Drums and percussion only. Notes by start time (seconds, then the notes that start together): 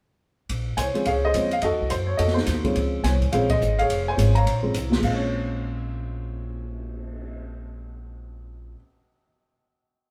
0.49 ride
0.77 hi-hat pedal, ride
0.95 ride
1.05 ride
1.34 hi-hat pedal, ride
1.51 ride
1.62 ride
1.90 hi-hat pedal, ride
2.19 ride
2.28 snare
2.37 snare
2.46 snare, hi-hat pedal, ride
2.65 kick, ride
2.76 ride
3.04 snare, hi-hat pedal, ride
3.21 kick, ride
3.33 ride
3.50 kick, ride
3.61 hi-hat pedal
3.79 ride
3.90 ride
4.19 hi-hat pedal, ride
4.35 ride
4.47 ride
4.74 hi-hat pedal, ride
4.92 snare
5.03 kick, crash
5.21 cymbal swell